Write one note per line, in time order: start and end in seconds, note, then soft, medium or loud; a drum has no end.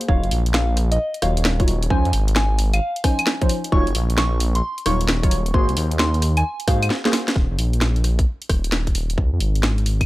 0.01 closed hi-hat medium
0.09 0.22 D#1 medium
0.09 0.23 F#3 medium
0.09 0.23 D#4 medium
0.09 0.23 F4 medium
0.09 0.23 C#5 medium
0.09 0.41 F5 loud
0.09 kick loud
0.23 0.30 F#1 medium
0.23 closed hi-hat soft
0.31 0.98 A#1 loud
0.31 open hi-hat loud
0.46 closed hi-hat medium
0.54 0.77 F5 medium
0.54 snare loud
0.77 cross-stick soft
0.77 open hi-hat medium
0.92 1.14 D#5 medium
0.92 closed hi-hat medium
1.14 closed hi-hat soft
1.22 1.66 D#1 medium
1.22 1.31 F#3 medium
1.22 1.31 D#4 medium
1.22 1.31 F4 medium
1.22 1.31 C#5 medium
1.22 1.84 F5 medium
1.22 cross-stick medium
1.22 open hi-hat loud
1.37 closed hi-hat medium
1.45 snare loud
1.60 1.64 F#3 medium
1.60 1.64 D#4 medium
1.60 1.64 F4 medium
1.60 1.64 C#5 loud
1.60 kick loud
1.60 closed hi-hat medium
1.68 1.88 D#1 loud
1.68 open hi-hat medium
1.83 closed hi-hat medium
1.90 2.03 C#2 loud
1.90 2.04 F3 medium
1.90 2.04 C#4 medium
1.90 2.04 D#4 medium
1.90 2.04 C5 medium
1.90 2.23 G#5 loud
1.90 kick loud
2.05 2.12 F2 medium
2.05 closed hi-hat soft
2.13 2.80 G#1 medium
2.13 open hi-hat loud
2.28 closed hi-hat medium
2.36 2.59 G#5 medium
2.36 snare loud
2.59 open hi-hat medium
2.73 2.96 F5 medium
2.73 closed hi-hat medium
2.73 claves medium
2.96 closed hi-hat medium
3.04 3.13 F3 medium
3.04 3.13 C#4 medium
3.04 3.13 D#4 medium
3.04 3.13 C5 medium
3.04 3.66 G#5 medium
3.04 kick loud
3.04 cross-stick medium
3.04 open hi-hat loud
3.19 closed hi-hat medium
3.19 claves medium
3.27 snare loud
3.42 3.46 F3 medium
3.42 3.46 C#4 medium
3.42 3.46 D#4 medium
3.42 3.46 C5 loud
3.42 kick loud
3.42 closed hi-hat medium
3.49 open hi-hat medium
3.64 closed hi-hat medium
3.72 3.85 D#1 loud
3.72 3.86 F#3 medium
3.72 3.86 D#4 medium
3.72 3.86 F4 medium
3.72 3.86 C#5 loud
3.72 4.05 C#6 loud
3.72 kick loud
3.87 3.94 F#1 medium
3.87 closed hi-hat soft
3.95 4.62 A#1 loud
3.95 open hi-hat loud
4.10 closed hi-hat medium
4.18 4.40 C#6 loud
4.18 snare loud
4.40 open hi-hat loud
4.55 4.78 C6 loud
4.55 closed hi-hat medium
4.78 closed hi-hat medium
4.86 5.30 D#1 medium
4.86 4.95 F#3 medium
4.86 4.95 D#4 medium
4.86 4.95 F4 medium
4.86 4.95 C#5 medium
4.86 5.48 C#6 medium
4.86 cross-stick medium
4.86 open hi-hat loud
5.01 closed hi-hat medium
5.08 snare loud
5.23 5.28 F#3 medium
5.23 5.28 D#4 medium
5.23 5.28 F4 medium
5.23 5.28 C#5 loud
5.23 kick loud
5.23 closed hi-hat medium
5.31 5.52 D#1 medium
5.31 open hi-hat loud
5.46 closed hi-hat medium
5.54 5.67 G#1 loud
5.54 5.68 A#3 medium
5.54 5.68 F#4 medium
5.54 5.68 G#4 medium
5.54 5.68 C5 medium
5.54 5.86 C6 loud
5.54 kick loud
5.69 5.76 C2 medium
5.69 closed hi-hat soft
5.77 6.43 D#2 loud
5.77 open hi-hat loud
5.91 closed hi-hat medium
5.99 6.22 C6 loud
5.99 snare loud
6.14 closed hi-hat soft
6.22 cross-stick soft
6.22 open hi-hat loud
6.37 6.60 G#5 loud
6.37 closed hi-hat medium
6.37 claves medium
6.60 closed hi-hat medium
6.68 6.90 G#2 medium
6.68 6.76 A#3 medium
6.68 6.76 F#4 medium
6.68 6.76 G#4 medium
6.68 6.76 C5 medium
6.68 7.30 F5 medium
6.68 kick loud
6.68 cross-stick medium
6.68 open hi-hat loud
6.83 closed hi-hat medium
6.83 claves medium
6.90 snare medium
7.05 7.10 A#3 medium
7.05 7.10 F#4 medium
7.05 7.10 G#4 medium
7.05 7.10 C5 loud
7.05 snare medium
7.05 closed hi-hat medium
7.13 snare medium
7.13 open hi-hat loud
7.28 snare medium
7.28 closed hi-hat medium
7.36 7.49 D#1 loud
7.36 kick loud
7.51 7.58 F#1 medium
7.58 8.25 A#1 medium
7.58 open hi-hat loud
7.73 closed hi-hat medium
7.81 snare loud
7.96 closed hi-hat soft
8.04 cross-stick soft
8.04 open hi-hat medium
8.19 kick loud
8.19 closed hi-hat medium
8.42 closed hi-hat soft
8.49 8.93 D#1 medium
8.49 kick loud
8.49 cross-stick medium
8.49 open hi-hat loud
8.64 closed hi-hat medium
8.72 snare loud
8.87 kick medium
8.87 closed hi-hat soft
8.95 9.16 D#1 medium
8.95 open hi-hat medium
9.10 closed hi-hat medium
9.18 9.31 C#2 medium
9.18 kick loud
9.33 9.40 F2 medium
9.40 10.06 G#1 loud
9.40 open hi-hat loud
9.55 closed hi-hat medium
9.63 snare loud
9.78 closed hi-hat soft
9.86 open hi-hat medium
10.01 kick medium
10.01 closed hi-hat medium
10.01 claves medium